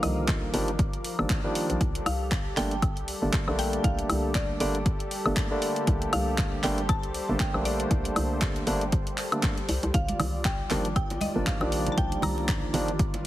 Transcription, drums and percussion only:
0.03 open hi-hat, high woodblock
0.28 kick, clap, closed hi-hat
0.54 open hi-hat
0.68 closed hi-hat
0.79 kick, closed hi-hat
0.93 closed hi-hat
1.05 open hi-hat
1.19 high woodblock
1.30 kick, clap, closed hi-hat
1.55 open hi-hat
1.70 closed hi-hat
1.81 kick, closed hi-hat
1.95 closed hi-hat
2.06 open hi-hat, high woodblock
2.31 kick, clap, closed hi-hat
2.57 clap, open hi-hat
2.71 closed hi-hat
2.82 kick, closed hi-hat, high woodblock
2.97 closed hi-hat
3.08 open hi-hat
3.33 kick, clap, closed hi-hat
3.48 high woodblock
3.59 open hi-hat
3.73 closed hi-hat
3.84 kick, closed hi-hat
3.99 closed hi-hat
4.10 open hi-hat, high woodblock
4.35 kick, clap, closed hi-hat
4.60 open hi-hat
4.75 closed hi-hat
4.86 kick, closed hi-hat
5.00 closed hi-hat
5.11 open hi-hat
5.26 high woodblock
5.36 kick, clap, closed hi-hat
5.62 open hi-hat
5.76 closed hi-hat
5.87 kick, closed hi-hat
6.02 closed hi-hat
6.13 open hi-hat, high woodblock
6.38 kick, clap, closed hi-hat
6.64 clap, open hi-hat
6.78 closed hi-hat
6.89 kick, closed hi-hat, high woodblock
7.03 closed hi-hat
7.14 open hi-hat
7.40 kick, clap, closed hi-hat
7.54 high woodblock
7.65 open hi-hat
7.80 closed hi-hat
7.91 kick, closed hi-hat
8.05 closed hi-hat
8.16 open hi-hat, high woodblock
8.42 kick, clap, closed hi-hat
8.56 closed hi-hat
8.67 open hi-hat
8.81 closed hi-hat
8.92 kick, closed hi-hat
9.07 closed hi-hat
9.18 clap, open hi-hat
9.32 closed hi-hat, high woodblock
9.43 kick, clap, closed hi-hat
9.58 closed hi-hat
9.69 open hi-hat
9.83 closed hi-hat
9.94 kick, closed hi-hat
10.09 closed hi-hat, high conga
10.20 open hi-hat, high conga, low conga, high woodblock
10.45 kick, clap, closed hi-hat
10.70 clap, open hi-hat, low conga
10.85 closed hi-hat
10.96 kick, closed hi-hat, high woodblock
11.10 closed hi-hat, high bongo
11.21 open hi-hat, high bongo, high conga
11.47 kick, clap, closed hi-hat
11.61 high bongo, high woodblock
11.72 open hi-hat
11.87 closed hi-hat, low conga
11.98 kick, closed hi-hat
12.12 closed hi-hat
12.22 open hi-hat, high conga, low conga, high woodblock
12.38 high bongo
12.48 kick, clap, closed hi-hat
12.74 open hi-hat, low conga
12.88 closed hi-hat
12.99 kick, closed hi-hat
13.14 closed hi-hat, high bongo

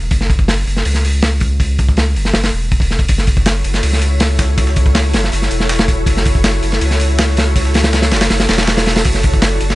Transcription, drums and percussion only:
0.11 kick, open hi-hat
0.21 snare
0.30 kick, open hi-hat
0.39 kick
0.48 snare, open hi-hat
0.67 open hi-hat
0.77 snare
0.85 open hi-hat
0.94 snare
1.05 open hi-hat
1.22 snare, open hi-hat
1.40 kick, open hi-hat
1.60 kick, open hi-hat
1.78 kick, open hi-hat
1.89 kick
1.97 snare, open hi-hat
2.16 open hi-hat
2.25 snare
2.34 snare, open hi-hat
2.43 snare, open hi-hat
2.71 kick, open hi-hat
2.80 kick, open hi-hat
2.91 snare
2.99 kick, open hi-hat
3.08 kick, closed hi-hat, open hi-hat
3.18 snare
3.27 kick, closed hi-hat, open hi-hat
3.37 kick
3.46 snare, closed hi-hat, open hi-hat
3.64 closed hi-hat, open hi-hat
3.74 snare
3.83 closed hi-hat, open hi-hat
3.93 snare
4.02 closed hi-hat, open hi-hat
4.20 snare, closed hi-hat, open hi-hat
4.39 kick, snare, closed hi-hat, open hi-hat
4.58 kick, closed hi-hat, open hi-hat
4.67 snare
4.76 kick, closed hi-hat, open hi-hat
4.86 kick
4.95 snare, closed hi-hat, open hi-hat
5.13 snare, closed hi-hat, open hi-hat
5.24 snare
5.32 closed hi-hat, open hi-hat
5.42 snare
5.51 closed hi-hat, open hi-hat
5.60 snare
5.69 snare, closed hi-hat, open hi-hat
5.79 snare
5.88 kick, closed hi-hat, open hi-hat
6.06 kick, closed hi-hat, open hi-hat
6.17 snare
6.25 kick, closed hi-hat, open hi-hat
6.35 kick
6.44 snare, closed hi-hat, open hi-hat
6.63 closed hi-hat, open hi-hat
6.72 snare
6.81 closed hi-hat, open hi-hat
6.91 snare
7.00 closed hi-hat, open hi-hat
7.19 snare, closed hi-hat, open hi-hat
7.28 snare
7.37 snare, closed hi-hat, open hi-hat
7.56 kick, closed hi-hat, open hi-hat
7.65 snare
7.74 snare, closed hi-hat, open hi-hat
7.84 snare, open hi-hat
7.93 snare, closed hi-hat, open hi-hat
8.02 snare, open hi-hat
8.11 snare, closed hi-hat, open hi-hat
8.16 snare, closed hi-hat
8.21 snare, closed hi-hat, open hi-hat
8.30 snare, closed hi-hat, open hi-hat
8.40 snare, open hi-hat
8.49 snare, closed hi-hat, open hi-hat
8.54 snare, closed hi-hat
8.58 snare, closed hi-hat, open hi-hat
8.63 snare, closed hi-hat
8.67 snare, closed hi-hat, open hi-hat
8.77 snare, open hi-hat
8.86 snare, closed hi-hat, open hi-hat
8.96 snare, open hi-hat
9.05 kick, closed hi-hat, open hi-hat
9.14 snare
9.23 kick, closed hi-hat, open hi-hat
9.34 kick
9.42 snare, closed hi-hat, open hi-hat
9.61 closed hi-hat, open hi-hat
9.70 snare

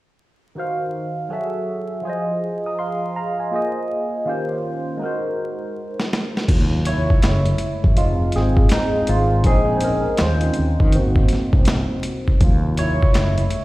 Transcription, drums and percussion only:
6.00 snare
6.13 snare
6.37 snare
6.48 kick, closed hi-hat, crash
6.85 closed hi-hat
7.10 kick
7.22 snare, clap, closed hi-hat
7.46 closed hi-hat
7.58 closed hi-hat
7.84 kick
7.97 closed hi-hat
8.32 closed hi-hat
8.36 snare
8.57 kick
8.69 snare, clap, closed hi-hat
9.07 closed hi-hat
9.44 kick, closed hi-hat
9.81 closed hi-hat
10.17 snare, clap, closed hi-hat
10.41 closed hi-hat
10.54 closed hi-hat
10.80 kick
10.92 closed hi-hat
11.16 kick
11.29 closed hi-hat
11.33 snare
11.53 kick
11.65 snare, clap, closed hi-hat
12.03 closed hi-hat
12.28 kick
12.41 kick, closed hi-hat
12.77 closed hi-hat
13.03 kick
13.14 snare, clap, closed hi-hat
13.38 closed hi-hat
13.51 closed hi-hat

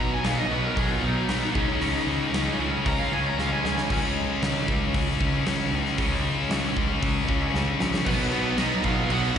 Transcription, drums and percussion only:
0.24 snare, open hi-hat
0.77 kick, open hi-hat
1.29 snare, open hi-hat
1.55 kick
1.81 open hi-hat
2.34 snare, open hi-hat
2.86 kick, open hi-hat
3.39 snare
3.65 snare
3.78 snare
3.90 kick, crash
4.42 snare, open hi-hat
4.68 kick, snare
4.94 kick, open hi-hat
5.21 kick
5.46 snare, open hi-hat
5.86 snare
5.98 kick, open hi-hat
6.51 snare, open hi-hat
6.77 kick
7.03 kick, open hi-hat
7.29 kick
7.55 snare
7.80 snare
7.94 snare
8.06 kick, crash
8.19 snare
8.32 crash
8.58 snare, crash
8.84 kick, crash
9.10 crash
9.24 snare

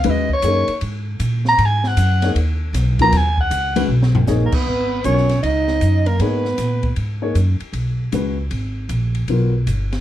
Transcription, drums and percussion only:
0.04 ride
0.29 kick
0.42 hi-hat pedal, ride
0.68 ride
0.81 ride
1.20 hi-hat pedal, ride
1.45 snare
1.58 ride
1.84 snare
1.97 hi-hat pedal, ride
2.22 snare, ride
2.36 ride
2.74 snare, hi-hat pedal, ride
2.99 kick, ride
3.12 snare, ride
3.37 kick
3.51 hi-hat pedal, ride
3.76 ride
4.03 snare
4.15 floor tom
4.27 snare, hi-hat pedal
4.52 kick, crash
5.04 hi-hat pedal, ride
5.17 snare
5.29 snare, ride
5.43 ride
5.68 snare
5.81 hi-hat pedal, ride
6.06 ride
6.20 ride
6.45 snare
6.58 snare, hi-hat pedal, ride
6.83 kick, ride
6.96 ride
7.35 hi-hat pedal, ride
7.60 ride
7.73 ride
8.12 hi-hat pedal, ride
8.51 ride
8.89 hi-hat pedal, ride
9.15 ride
9.28 ride
9.67 hi-hat pedal, ride
9.92 snare, ride

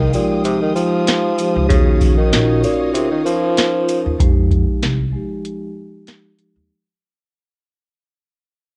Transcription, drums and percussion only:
0.13 shaker, sleigh bells
0.44 closed hi-hat, sleigh bells
0.76 shaker, sleigh bells
1.07 snare, closed hi-hat, sleigh bells
1.38 closed hi-hat, shaker, sleigh bells
1.70 kick, closed hi-hat, sleigh bells
2.01 kick, closed hi-hat, shaker, sleigh bells
2.33 snare, closed hi-hat, sleigh bells
2.64 shaker, sleigh bells
2.94 closed hi-hat, sleigh bells
3.26 shaker, sleigh bells
3.57 snare, closed hi-hat, sleigh bells
3.88 closed hi-hat, shaker, sleigh bells
4.20 kick, closed hi-hat
4.51 kick, closed hi-hat
4.83 snare, closed hi-hat
5.45 closed hi-hat
6.07 snare, closed hi-hat
6.39 closed hi-hat

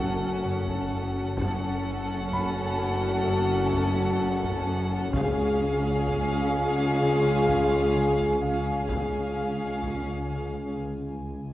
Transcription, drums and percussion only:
0.68 taiko
1.38 taiko
2.32 taiko
3.73 taiko
4.43 taiko
5.13 taiko
6.07 taiko
7.47 taiko
8.18 taiko
8.89 taiko
9.82 taiko

